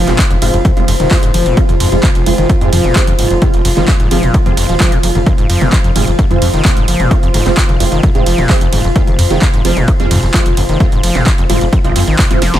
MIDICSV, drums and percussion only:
0, 0, Header, 1, 2, 480
1, 0, Start_track
1, 0, Key_signature, -4, "minor"
1, 0, Tempo, 461538
1, 1636, Time_signature, 4, 2, 24, 8
1, 13099, End_track
2, 0, Start_track
2, 0, Title_t, "Drums"
2, 78, Note_on_c, 9, 39, 37
2, 78, Note_on_c, 9, 42, 56
2, 182, Note_off_c, 9, 39, 0
2, 182, Note_off_c, 9, 42, 0
2, 195, Note_on_c, 9, 36, 126
2, 195, Note_on_c, 9, 39, 119
2, 195, Note_on_c, 9, 42, 84
2, 299, Note_off_c, 9, 36, 0
2, 299, Note_off_c, 9, 39, 0
2, 299, Note_off_c, 9, 42, 0
2, 319, Note_on_c, 9, 42, 57
2, 319, Note_on_c, 9, 47, 66
2, 423, Note_off_c, 9, 42, 0
2, 423, Note_off_c, 9, 47, 0
2, 436, Note_on_c, 9, 46, 111
2, 436, Note_on_c, 9, 51, 77
2, 540, Note_off_c, 9, 46, 0
2, 540, Note_off_c, 9, 51, 0
2, 559, Note_on_c, 9, 42, 55
2, 663, Note_off_c, 9, 42, 0
2, 675, Note_on_c, 9, 36, 125
2, 676, Note_on_c, 9, 42, 90
2, 676, Note_on_c, 9, 47, 67
2, 779, Note_off_c, 9, 36, 0
2, 780, Note_off_c, 9, 42, 0
2, 780, Note_off_c, 9, 47, 0
2, 799, Note_on_c, 9, 42, 55
2, 903, Note_off_c, 9, 42, 0
2, 916, Note_on_c, 9, 46, 113
2, 916, Note_on_c, 9, 51, 80
2, 1020, Note_off_c, 9, 46, 0
2, 1020, Note_off_c, 9, 51, 0
2, 1039, Note_on_c, 9, 42, 56
2, 1039, Note_on_c, 9, 47, 67
2, 1143, Note_off_c, 9, 42, 0
2, 1143, Note_off_c, 9, 47, 0
2, 1155, Note_on_c, 9, 36, 125
2, 1155, Note_on_c, 9, 39, 122
2, 1155, Note_on_c, 9, 46, 65
2, 1259, Note_off_c, 9, 36, 0
2, 1259, Note_off_c, 9, 39, 0
2, 1259, Note_off_c, 9, 46, 0
2, 1278, Note_on_c, 9, 42, 86
2, 1382, Note_off_c, 9, 42, 0
2, 1395, Note_on_c, 9, 46, 112
2, 1395, Note_on_c, 9, 47, 64
2, 1395, Note_on_c, 9, 51, 78
2, 1499, Note_off_c, 9, 46, 0
2, 1499, Note_off_c, 9, 47, 0
2, 1499, Note_off_c, 9, 51, 0
2, 1518, Note_on_c, 9, 42, 54
2, 1622, Note_off_c, 9, 42, 0
2, 1634, Note_on_c, 9, 36, 126
2, 1634, Note_on_c, 9, 42, 79
2, 1738, Note_off_c, 9, 36, 0
2, 1738, Note_off_c, 9, 42, 0
2, 1758, Note_on_c, 9, 42, 54
2, 1758, Note_on_c, 9, 47, 65
2, 1862, Note_off_c, 9, 42, 0
2, 1862, Note_off_c, 9, 47, 0
2, 1875, Note_on_c, 9, 46, 116
2, 1875, Note_on_c, 9, 51, 78
2, 1979, Note_off_c, 9, 46, 0
2, 1979, Note_off_c, 9, 51, 0
2, 1998, Note_on_c, 9, 42, 57
2, 2102, Note_off_c, 9, 42, 0
2, 2114, Note_on_c, 9, 36, 126
2, 2115, Note_on_c, 9, 39, 117
2, 2115, Note_on_c, 9, 42, 82
2, 2115, Note_on_c, 9, 47, 68
2, 2218, Note_off_c, 9, 36, 0
2, 2219, Note_off_c, 9, 39, 0
2, 2219, Note_off_c, 9, 42, 0
2, 2219, Note_off_c, 9, 47, 0
2, 2238, Note_on_c, 9, 42, 56
2, 2342, Note_off_c, 9, 42, 0
2, 2355, Note_on_c, 9, 46, 112
2, 2355, Note_on_c, 9, 51, 77
2, 2459, Note_off_c, 9, 46, 0
2, 2459, Note_off_c, 9, 51, 0
2, 2478, Note_on_c, 9, 42, 55
2, 2478, Note_on_c, 9, 47, 63
2, 2582, Note_off_c, 9, 42, 0
2, 2582, Note_off_c, 9, 47, 0
2, 2594, Note_on_c, 9, 36, 123
2, 2595, Note_on_c, 9, 42, 85
2, 2698, Note_off_c, 9, 36, 0
2, 2699, Note_off_c, 9, 42, 0
2, 2718, Note_on_c, 9, 42, 53
2, 2822, Note_off_c, 9, 42, 0
2, 2835, Note_on_c, 9, 46, 118
2, 2835, Note_on_c, 9, 47, 67
2, 2835, Note_on_c, 9, 51, 78
2, 2939, Note_off_c, 9, 46, 0
2, 2939, Note_off_c, 9, 47, 0
2, 2939, Note_off_c, 9, 51, 0
2, 2957, Note_on_c, 9, 42, 56
2, 3061, Note_off_c, 9, 42, 0
2, 3075, Note_on_c, 9, 36, 127
2, 3075, Note_on_c, 9, 39, 118
2, 3075, Note_on_c, 9, 42, 54
2, 3179, Note_off_c, 9, 36, 0
2, 3179, Note_off_c, 9, 39, 0
2, 3179, Note_off_c, 9, 42, 0
2, 3197, Note_on_c, 9, 42, 85
2, 3197, Note_on_c, 9, 47, 66
2, 3301, Note_off_c, 9, 42, 0
2, 3301, Note_off_c, 9, 47, 0
2, 3314, Note_on_c, 9, 46, 117
2, 3314, Note_on_c, 9, 51, 76
2, 3418, Note_off_c, 9, 46, 0
2, 3418, Note_off_c, 9, 51, 0
2, 3437, Note_on_c, 9, 42, 53
2, 3541, Note_off_c, 9, 42, 0
2, 3554, Note_on_c, 9, 42, 79
2, 3554, Note_on_c, 9, 47, 67
2, 3555, Note_on_c, 9, 36, 121
2, 3658, Note_off_c, 9, 42, 0
2, 3658, Note_off_c, 9, 47, 0
2, 3659, Note_off_c, 9, 36, 0
2, 3678, Note_on_c, 9, 42, 53
2, 3782, Note_off_c, 9, 42, 0
2, 3795, Note_on_c, 9, 46, 113
2, 3795, Note_on_c, 9, 51, 78
2, 3899, Note_off_c, 9, 46, 0
2, 3899, Note_off_c, 9, 51, 0
2, 3918, Note_on_c, 9, 39, 35
2, 3918, Note_on_c, 9, 42, 53
2, 3918, Note_on_c, 9, 47, 69
2, 4022, Note_off_c, 9, 39, 0
2, 4022, Note_off_c, 9, 42, 0
2, 4022, Note_off_c, 9, 47, 0
2, 4035, Note_on_c, 9, 36, 125
2, 4035, Note_on_c, 9, 39, 118
2, 4035, Note_on_c, 9, 42, 80
2, 4139, Note_off_c, 9, 36, 0
2, 4139, Note_off_c, 9, 39, 0
2, 4139, Note_off_c, 9, 42, 0
2, 4158, Note_on_c, 9, 42, 54
2, 4262, Note_off_c, 9, 42, 0
2, 4276, Note_on_c, 9, 46, 113
2, 4276, Note_on_c, 9, 47, 69
2, 4276, Note_on_c, 9, 51, 76
2, 4380, Note_off_c, 9, 46, 0
2, 4380, Note_off_c, 9, 47, 0
2, 4380, Note_off_c, 9, 51, 0
2, 4399, Note_on_c, 9, 42, 53
2, 4503, Note_off_c, 9, 42, 0
2, 4515, Note_on_c, 9, 36, 121
2, 4515, Note_on_c, 9, 42, 83
2, 4619, Note_off_c, 9, 36, 0
2, 4619, Note_off_c, 9, 42, 0
2, 4638, Note_on_c, 9, 42, 53
2, 4638, Note_on_c, 9, 47, 67
2, 4742, Note_off_c, 9, 42, 0
2, 4742, Note_off_c, 9, 47, 0
2, 4756, Note_on_c, 9, 46, 117
2, 4756, Note_on_c, 9, 51, 81
2, 4860, Note_off_c, 9, 46, 0
2, 4860, Note_off_c, 9, 51, 0
2, 4879, Note_on_c, 9, 42, 53
2, 4983, Note_off_c, 9, 42, 0
2, 4995, Note_on_c, 9, 36, 125
2, 4996, Note_on_c, 9, 39, 115
2, 4996, Note_on_c, 9, 46, 66
2, 4996, Note_on_c, 9, 47, 68
2, 5099, Note_off_c, 9, 36, 0
2, 5100, Note_off_c, 9, 39, 0
2, 5100, Note_off_c, 9, 46, 0
2, 5100, Note_off_c, 9, 47, 0
2, 5118, Note_on_c, 9, 42, 80
2, 5222, Note_off_c, 9, 42, 0
2, 5235, Note_on_c, 9, 46, 110
2, 5235, Note_on_c, 9, 51, 76
2, 5339, Note_off_c, 9, 46, 0
2, 5339, Note_off_c, 9, 51, 0
2, 5358, Note_on_c, 9, 42, 51
2, 5358, Note_on_c, 9, 47, 67
2, 5462, Note_off_c, 9, 42, 0
2, 5462, Note_off_c, 9, 47, 0
2, 5475, Note_on_c, 9, 36, 120
2, 5475, Note_on_c, 9, 42, 75
2, 5475, Note_on_c, 9, 47, 68
2, 5579, Note_off_c, 9, 36, 0
2, 5579, Note_off_c, 9, 42, 0
2, 5579, Note_off_c, 9, 47, 0
2, 5597, Note_on_c, 9, 42, 51
2, 5701, Note_off_c, 9, 42, 0
2, 5716, Note_on_c, 9, 46, 106
2, 5716, Note_on_c, 9, 51, 80
2, 5820, Note_off_c, 9, 46, 0
2, 5820, Note_off_c, 9, 51, 0
2, 5838, Note_on_c, 9, 42, 52
2, 5838, Note_on_c, 9, 47, 72
2, 5942, Note_off_c, 9, 42, 0
2, 5942, Note_off_c, 9, 47, 0
2, 5955, Note_on_c, 9, 36, 123
2, 5955, Note_on_c, 9, 39, 120
2, 5955, Note_on_c, 9, 42, 77
2, 6059, Note_off_c, 9, 36, 0
2, 6059, Note_off_c, 9, 39, 0
2, 6059, Note_off_c, 9, 42, 0
2, 6077, Note_on_c, 9, 42, 54
2, 6181, Note_off_c, 9, 42, 0
2, 6195, Note_on_c, 9, 46, 110
2, 6195, Note_on_c, 9, 47, 70
2, 6195, Note_on_c, 9, 51, 80
2, 6299, Note_off_c, 9, 46, 0
2, 6299, Note_off_c, 9, 47, 0
2, 6299, Note_off_c, 9, 51, 0
2, 6318, Note_on_c, 9, 42, 51
2, 6422, Note_off_c, 9, 42, 0
2, 6434, Note_on_c, 9, 36, 116
2, 6435, Note_on_c, 9, 42, 80
2, 6538, Note_off_c, 9, 36, 0
2, 6539, Note_off_c, 9, 42, 0
2, 6559, Note_on_c, 9, 42, 50
2, 6559, Note_on_c, 9, 47, 69
2, 6663, Note_off_c, 9, 42, 0
2, 6663, Note_off_c, 9, 47, 0
2, 6675, Note_on_c, 9, 46, 113
2, 6675, Note_on_c, 9, 51, 82
2, 6779, Note_off_c, 9, 46, 0
2, 6779, Note_off_c, 9, 51, 0
2, 6797, Note_on_c, 9, 42, 51
2, 6901, Note_off_c, 9, 42, 0
2, 6914, Note_on_c, 9, 36, 125
2, 6916, Note_on_c, 9, 39, 117
2, 6916, Note_on_c, 9, 42, 51
2, 6916, Note_on_c, 9, 47, 70
2, 7018, Note_off_c, 9, 36, 0
2, 7020, Note_off_c, 9, 39, 0
2, 7020, Note_off_c, 9, 42, 0
2, 7020, Note_off_c, 9, 47, 0
2, 7038, Note_on_c, 9, 42, 81
2, 7142, Note_off_c, 9, 42, 0
2, 7155, Note_on_c, 9, 46, 110
2, 7155, Note_on_c, 9, 51, 80
2, 7259, Note_off_c, 9, 46, 0
2, 7259, Note_off_c, 9, 51, 0
2, 7278, Note_on_c, 9, 42, 50
2, 7278, Note_on_c, 9, 47, 69
2, 7382, Note_off_c, 9, 42, 0
2, 7382, Note_off_c, 9, 47, 0
2, 7394, Note_on_c, 9, 36, 113
2, 7396, Note_on_c, 9, 42, 76
2, 7498, Note_off_c, 9, 36, 0
2, 7500, Note_off_c, 9, 42, 0
2, 7519, Note_on_c, 9, 42, 52
2, 7623, Note_off_c, 9, 42, 0
2, 7636, Note_on_c, 9, 46, 105
2, 7636, Note_on_c, 9, 47, 72
2, 7636, Note_on_c, 9, 51, 84
2, 7740, Note_off_c, 9, 46, 0
2, 7740, Note_off_c, 9, 47, 0
2, 7740, Note_off_c, 9, 51, 0
2, 7759, Note_on_c, 9, 39, 38
2, 7759, Note_on_c, 9, 42, 51
2, 7863, Note_off_c, 9, 39, 0
2, 7863, Note_off_c, 9, 42, 0
2, 7874, Note_on_c, 9, 36, 114
2, 7876, Note_on_c, 9, 39, 121
2, 7876, Note_on_c, 9, 42, 78
2, 7978, Note_off_c, 9, 36, 0
2, 7980, Note_off_c, 9, 39, 0
2, 7980, Note_off_c, 9, 42, 0
2, 7998, Note_on_c, 9, 42, 51
2, 7998, Note_on_c, 9, 47, 72
2, 8102, Note_off_c, 9, 42, 0
2, 8102, Note_off_c, 9, 47, 0
2, 8115, Note_on_c, 9, 46, 105
2, 8115, Note_on_c, 9, 51, 84
2, 8219, Note_off_c, 9, 46, 0
2, 8219, Note_off_c, 9, 51, 0
2, 8237, Note_on_c, 9, 42, 52
2, 8341, Note_off_c, 9, 42, 0
2, 8354, Note_on_c, 9, 36, 115
2, 8355, Note_on_c, 9, 42, 77
2, 8355, Note_on_c, 9, 47, 73
2, 8458, Note_off_c, 9, 36, 0
2, 8459, Note_off_c, 9, 42, 0
2, 8459, Note_off_c, 9, 47, 0
2, 8476, Note_on_c, 9, 42, 50
2, 8580, Note_off_c, 9, 42, 0
2, 8595, Note_on_c, 9, 46, 108
2, 8595, Note_on_c, 9, 51, 85
2, 8699, Note_off_c, 9, 46, 0
2, 8699, Note_off_c, 9, 51, 0
2, 8717, Note_on_c, 9, 42, 52
2, 8717, Note_on_c, 9, 47, 72
2, 8821, Note_off_c, 9, 42, 0
2, 8821, Note_off_c, 9, 47, 0
2, 8834, Note_on_c, 9, 36, 118
2, 8836, Note_on_c, 9, 39, 119
2, 8836, Note_on_c, 9, 46, 61
2, 8938, Note_off_c, 9, 36, 0
2, 8940, Note_off_c, 9, 39, 0
2, 8940, Note_off_c, 9, 46, 0
2, 8957, Note_on_c, 9, 42, 80
2, 9061, Note_off_c, 9, 42, 0
2, 9075, Note_on_c, 9, 46, 105
2, 9075, Note_on_c, 9, 47, 71
2, 9075, Note_on_c, 9, 51, 86
2, 9179, Note_off_c, 9, 46, 0
2, 9179, Note_off_c, 9, 47, 0
2, 9179, Note_off_c, 9, 51, 0
2, 9198, Note_on_c, 9, 42, 50
2, 9302, Note_off_c, 9, 42, 0
2, 9314, Note_on_c, 9, 36, 112
2, 9315, Note_on_c, 9, 42, 78
2, 9418, Note_off_c, 9, 36, 0
2, 9419, Note_off_c, 9, 42, 0
2, 9438, Note_on_c, 9, 42, 51
2, 9438, Note_on_c, 9, 47, 67
2, 9542, Note_off_c, 9, 42, 0
2, 9542, Note_off_c, 9, 47, 0
2, 9555, Note_on_c, 9, 46, 100
2, 9555, Note_on_c, 9, 51, 87
2, 9659, Note_off_c, 9, 46, 0
2, 9659, Note_off_c, 9, 51, 0
2, 9677, Note_on_c, 9, 42, 52
2, 9781, Note_off_c, 9, 42, 0
2, 9795, Note_on_c, 9, 36, 118
2, 9795, Note_on_c, 9, 39, 124
2, 9795, Note_on_c, 9, 42, 79
2, 9795, Note_on_c, 9, 47, 68
2, 9899, Note_off_c, 9, 36, 0
2, 9899, Note_off_c, 9, 39, 0
2, 9899, Note_off_c, 9, 42, 0
2, 9899, Note_off_c, 9, 47, 0
2, 9918, Note_on_c, 9, 42, 54
2, 10022, Note_off_c, 9, 42, 0
2, 10034, Note_on_c, 9, 46, 102
2, 10034, Note_on_c, 9, 51, 84
2, 10138, Note_off_c, 9, 46, 0
2, 10138, Note_off_c, 9, 51, 0
2, 10157, Note_on_c, 9, 42, 52
2, 10157, Note_on_c, 9, 47, 69
2, 10261, Note_off_c, 9, 42, 0
2, 10261, Note_off_c, 9, 47, 0
2, 10274, Note_on_c, 9, 42, 82
2, 10275, Note_on_c, 9, 36, 112
2, 10378, Note_off_c, 9, 42, 0
2, 10379, Note_off_c, 9, 36, 0
2, 10397, Note_on_c, 9, 42, 50
2, 10501, Note_off_c, 9, 42, 0
2, 10514, Note_on_c, 9, 46, 105
2, 10514, Note_on_c, 9, 47, 73
2, 10514, Note_on_c, 9, 51, 87
2, 10618, Note_off_c, 9, 46, 0
2, 10618, Note_off_c, 9, 47, 0
2, 10618, Note_off_c, 9, 51, 0
2, 10637, Note_on_c, 9, 42, 53
2, 10741, Note_off_c, 9, 42, 0
2, 10754, Note_on_c, 9, 36, 116
2, 10755, Note_on_c, 9, 39, 123
2, 10755, Note_on_c, 9, 42, 53
2, 10858, Note_off_c, 9, 36, 0
2, 10859, Note_off_c, 9, 39, 0
2, 10859, Note_off_c, 9, 42, 0
2, 10877, Note_on_c, 9, 42, 83
2, 10877, Note_on_c, 9, 47, 72
2, 10981, Note_off_c, 9, 42, 0
2, 10981, Note_off_c, 9, 47, 0
2, 10995, Note_on_c, 9, 46, 104
2, 10995, Note_on_c, 9, 51, 86
2, 11099, Note_off_c, 9, 46, 0
2, 11099, Note_off_c, 9, 51, 0
2, 11118, Note_on_c, 9, 42, 52
2, 11222, Note_off_c, 9, 42, 0
2, 11235, Note_on_c, 9, 36, 116
2, 11235, Note_on_c, 9, 42, 81
2, 11235, Note_on_c, 9, 47, 64
2, 11339, Note_off_c, 9, 36, 0
2, 11339, Note_off_c, 9, 42, 0
2, 11339, Note_off_c, 9, 47, 0
2, 11358, Note_on_c, 9, 42, 54
2, 11462, Note_off_c, 9, 42, 0
2, 11476, Note_on_c, 9, 46, 106
2, 11476, Note_on_c, 9, 51, 83
2, 11580, Note_off_c, 9, 46, 0
2, 11580, Note_off_c, 9, 51, 0
2, 11597, Note_on_c, 9, 39, 39
2, 11597, Note_on_c, 9, 42, 55
2, 11597, Note_on_c, 9, 47, 68
2, 11701, Note_off_c, 9, 39, 0
2, 11701, Note_off_c, 9, 42, 0
2, 11701, Note_off_c, 9, 47, 0
2, 11715, Note_on_c, 9, 36, 120
2, 11716, Note_on_c, 9, 39, 127
2, 11716, Note_on_c, 9, 42, 83
2, 11819, Note_off_c, 9, 36, 0
2, 11820, Note_off_c, 9, 39, 0
2, 11820, Note_off_c, 9, 42, 0
2, 11838, Note_on_c, 9, 42, 56
2, 11942, Note_off_c, 9, 42, 0
2, 11956, Note_on_c, 9, 46, 104
2, 11956, Note_on_c, 9, 47, 66
2, 11956, Note_on_c, 9, 51, 82
2, 12060, Note_off_c, 9, 46, 0
2, 12060, Note_off_c, 9, 47, 0
2, 12060, Note_off_c, 9, 51, 0
2, 12077, Note_on_c, 9, 42, 55
2, 12181, Note_off_c, 9, 42, 0
2, 12195, Note_on_c, 9, 36, 114
2, 12196, Note_on_c, 9, 42, 88
2, 12299, Note_off_c, 9, 36, 0
2, 12300, Note_off_c, 9, 42, 0
2, 12319, Note_on_c, 9, 42, 53
2, 12319, Note_on_c, 9, 47, 64
2, 12423, Note_off_c, 9, 42, 0
2, 12423, Note_off_c, 9, 47, 0
2, 12436, Note_on_c, 9, 46, 110
2, 12436, Note_on_c, 9, 51, 88
2, 12540, Note_off_c, 9, 46, 0
2, 12540, Note_off_c, 9, 51, 0
2, 12558, Note_on_c, 9, 42, 56
2, 12662, Note_off_c, 9, 42, 0
2, 12676, Note_on_c, 9, 36, 119
2, 12676, Note_on_c, 9, 39, 127
2, 12676, Note_on_c, 9, 46, 62
2, 12676, Note_on_c, 9, 47, 67
2, 12780, Note_off_c, 9, 36, 0
2, 12780, Note_off_c, 9, 39, 0
2, 12780, Note_off_c, 9, 46, 0
2, 12780, Note_off_c, 9, 47, 0
2, 12799, Note_on_c, 9, 42, 83
2, 12903, Note_off_c, 9, 42, 0
2, 12916, Note_on_c, 9, 38, 64
2, 12916, Note_on_c, 9, 46, 104
2, 12916, Note_on_c, 9, 51, 83
2, 13020, Note_off_c, 9, 38, 0
2, 13020, Note_off_c, 9, 46, 0
2, 13020, Note_off_c, 9, 51, 0
2, 13039, Note_on_c, 9, 38, 73
2, 13039, Note_on_c, 9, 42, 53
2, 13039, Note_on_c, 9, 47, 64
2, 13099, Note_off_c, 9, 38, 0
2, 13099, Note_off_c, 9, 42, 0
2, 13099, Note_off_c, 9, 47, 0
2, 13099, End_track
0, 0, End_of_file